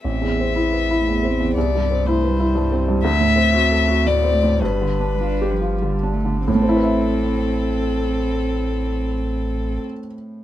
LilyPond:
<<
  \new Staff \with { instrumentName = "Violin" } { \time 3/4 \key a \minor \tempo 4 = 105 e''2. | d''4 c''4. r8 | e''2 d''4 | b'2 r4 |
a'2.~ | a'2. | }
  \new Staff \with { instrumentName = "Felt piano" } { \time 3/4 \key a \minor \tuplet 3/2 { a,,8 e,8 c'8 e'8 b'8 e'8 e,8 c'8 e,8 } | \tuplet 3/2 { c,8 g,8 c'8 e'8 b'8 e'8 g,8 c'8 g,8 } | \tuplet 3/2 { d,8 a,8 c'8 fis'8 a'8 fis'8 a,8 c'8 a,8 } | \tuplet 3/2 { g,8 d8 d'8 f'8 g'8 f'8 d8 d'8 d8 } |
<a, a c' e' b' e''>2.~ | <a, a c' e' b' e''>2. | }
  \new Staff \with { instrumentName = "Cello" } { \time 3/4 \key a \minor c'4 b4 a8 c'8 | b4 a8 g4. | a4 c'4 b8 a8 | g4 d'8 f8 g8 a8 |
c'2.~ | c'2. | }
  \new Staff \with { instrumentName = "Sub bass" } { \clef bass \time 3/4 \key a \minor a,,2. | c,2. | d,2. | g,,2. |
a,,2.~ | a,,2. | }
>>